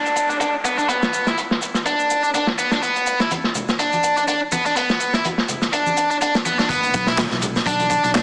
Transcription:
Already playing: distorted electric guitar D4, downlifter
0.06 closed hi-hat, shaker
0.16 closed hi-hat, shaker
0.29 distorted electric guitar D4, closed hi-hat, shaker
0.40 distorted electric guitar D4, closed hi-hat, shaker
0.65 distorted electric guitar B3, closed hi-hat, shaker
0.78 distorted electric guitar D4, closed hi-hat, shaker
0.89 distorted electric guitar B3, closed hi-hat, shaker
1.03 snare, shaker
1.13 closed hi-hat, shaker
1.27 distorted electric guitar E4, snare, shaker
1.38 closed hi-hat, shaker
1.51 snare
1.62 closed hi-hat, shaker
1.74 snare, shaker
1.86 distorted electric guitar D4, closed hi-hat, shaker
2.00 shaker
2.10 closed hi-hat, shaker
2.23 distorted electric guitar D4, shaker
2.34 distorted electric guitar D4, closed hi-hat, shaker
2.47 snare
2.58 distorted electric guitar B3, closed hi-hat, shaker
2.71 distorted electric guitar D4, snare, shaker
2.83 distorted electric guitar B3, closed hi-hat, shaker
2.96 closed hi-hat, shaker
3.07 closed hi-hat, shaker
3.20 distorted electric guitar E4, snare, shaker
3.31 closed hi-hat, high conga, shaker
3.44 snare
3.55 closed hi-hat, low conga, shaker
3.69 snare, shaker
3.79 distorted electric guitar D4, closed hi-hat, shaker
3.93 closed hi-hat, high conga, shaker
4.03 closed hi-hat, shaker
4.17 distorted electric guitar D4, closed hi-hat, shaker
4.28 distorted electric guitar D4, closed hi-hat, shaker
4.52 distorted electric guitar B3, closed hi-hat, high conga, shaker
4.66 distorted electric guitar D4, closed hi-hat, shaker
4.76 distorted electric guitar B3, closed hi-hat, shaker
4.90 snare, shaker
5.00 closed hi-hat, shaker
5.13 distorted electric guitar E4, snare, shaker
5.25 closed hi-hat, high conga, shaker
5.38 snare
5.49 closed hi-hat, low conga, shaker
5.62 snare, shaker
5.73 distorted electric guitar D4, closed hi-hat, shaker
5.86 high conga, shaker
5.97 closed hi-hat, shaker
6.11 distorted electric guitar D4, shaker
6.21 distorted electric guitar D4, closed hi-hat, shaker
6.35 snare, shaker
6.45 distorted electric guitar B3, closed hi-hat, high conga, shaker
6.59 distorted electric guitar D4, snare, shaker
6.69 distorted electric guitar B3, kick, closed hi-hat, impact, shaker
6.83 closed hi-hat, shaker
6.94 fingered electric bass B1, kick, closed hi-hat, shaker
7.07 distorted electric guitar E4, snare, shaker
7.18 snare, clap, closed hi-hat, high conga, shaker
7.31 fingered electric bass B1, snare, shaker
7.42 closed hi-hat, low conga, shaker
7.56 snare, shaker
7.66 fingered electric bass B1, distorted electric guitar D4, kick, closed hi-hat, shaker
7.80 closed hi-hat, high conga, shaker
7.90 kick, closed hi-hat, shaker
8.04 fingered electric bass B1, distorted electric guitar D4, closed hi-hat, shaker
8.15 distorted electric guitar D4, snare, clap, closed hi-hat, shaker

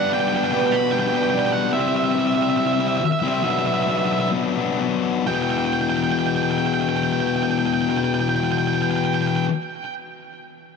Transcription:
Already playing: distorted electric guitar G3 B3 D4, vibraphone D5, lead electric guitar F#5
0.13 lead electric guitar G5
0.20 lead electric guitar G5
0.28 lead electric guitar G5
0.33 distorted electric guitar G3 B3 D4, lead electric guitar G5
0.44 lead electric guitar G5
0.52 distorted electric guitar B2 G3 B3 D4, vibraphone B4, lead electric guitar G5
0.60 lead electric guitar G5
0.67 lead electric guitar G5
0.71 lead electric guitar B5
0.91 distorted electric guitar B2 G3 B3 D4, lead electric guitar G5
1.00 lead electric guitar G5
1.07 lead electric guitar G5
1.12 distorted electric guitar G3 B3 D4, lead electric guitar G5
1.23 lead electric guitar G5
1.30 distorted electric guitar B2 G3, vibraphone D5, lead electric guitar G5
1.34 distorted electric guitar B3 D4
1.39 lead electric guitar G5
1.46 lead electric guitar G5
1.52 lead electric guitar F#5
1.73 distorted electric guitar C3 G3 C4 E4, lead electric guitar E5
1.80 lead electric guitar E5
1.88 lead electric guitar E5
1.96 lead electric guitar E5
2.04 lead electric guitar E5
2.11 distorted electric guitar C3, lead electric guitar E5
2.16 distorted electric guitar G3 C4 E4, lead electric guitar E5
2.27 lead electric guitar E5
2.35 distorted electric guitar G3 C4 E4, lead electric guitar E5
2.42 lead electric guitar E5
2.50 lead electric guitar E5
2.57 distorted electric guitar C3 G3 C4 E4, lead electric guitar E5
2.67 lead electric guitar E5
2.73 lead electric guitar E5
2.79 distorted electric guitar G3 C4 E4, lead electric guitar E5
2.88 lead electric guitar E5
2.97 lead electric guitar E5, muted distorted electric guitar stroke
3.05 lead electric guitar E5
3.12 lead electric guitar E5
3.20 distorted electric guitar C4 E4, lead electric guitar E5
3.24 distorted electric guitar G3, lead electric guitar E5
3.34 lead electric guitar E5
3.43 distorted electric guitar B2 F#3 B3 D4, lead electric guitar E5
3.50 lead electric guitar E5
3.59 lead electric guitar E5
3.65 distorted electric guitar F#3 B3 D4, lead electric guitar E5
3.74 lead electric guitar E5
3.82 lead electric guitar E5
3.87 distorted electric guitar B2 F#3 B3 D4, lead electric guitar E5
3.98 lead electric guitar E5
4.05 lead electric guitar E5
4.12 lead electric guitar E5
4.20 lead electric guitar E5
4.32 distorted electric guitar B2 F#3 B3 D4
4.56 distorted electric guitar F#3 B3 D4
4.79 distorted electric guitar B2 F#3 B3 D4
5.24 distorted electric guitar E2 B2, lead electric guitar G5
5.28 distorted electric guitar E3
5.35 lead electric guitar G5
5.42 lead electric guitar G5
5.50 lead electric guitar G5
5.58 lead electric guitar G5
5.65 lead electric guitar G5
5.73 lead electric guitar G5
5.81 lead electric guitar G5
5.90 lead electric guitar G5
5.97 lead electric guitar G5
6.04 lead electric guitar G5
6.12 lead electric guitar G5
6.19 lead electric guitar G5
6.27 lead electric guitar G5
6.36 lead electric guitar G5
6.43 lead electric guitar G5
6.51 lead electric guitar G5
6.58 lead electric guitar G5
6.66 lead electric guitar G5
6.74 lead electric guitar G5
6.81 lead electric guitar G5
6.89 lead electric guitar G5
6.97 lead electric guitar G5
7.03 lead electric guitar G5
7.13 lead electric guitar G5
7.20 lead electric guitar G5
7.27 lead electric guitar G5
7.36 lead electric guitar G5
7.43 lead electric guitar G5
7.51 lead electric guitar G5
7.59 lead electric guitar G5
7.66 lead electric guitar G5
7.74 lead electric guitar G5
7.82 lead electric guitar G5
7.90 lead electric guitar G5
7.98 lead electric guitar G5
8.04 lead electric guitar G5
8.14 lead electric guitar G5
8.20 lead electric guitar G5
8.29 lead electric guitar G5
8.36 lead electric guitar G5
8.44 lead electric guitar G5
8.52 lead electric guitar G5
8.58 lead electric guitar G5
8.67 lead electric guitar G5
8.74 lead electric guitar G5
8.82 lead electric guitar G5
8.91 lead electric guitar G5
8.96 lead electric guitar G5
9.05 lead electric guitar G5
9.14 lead electric guitar G5
9.22 lead electric guitar G5
9.27 lead electric guitar G5
9.36 lead electric guitar G5

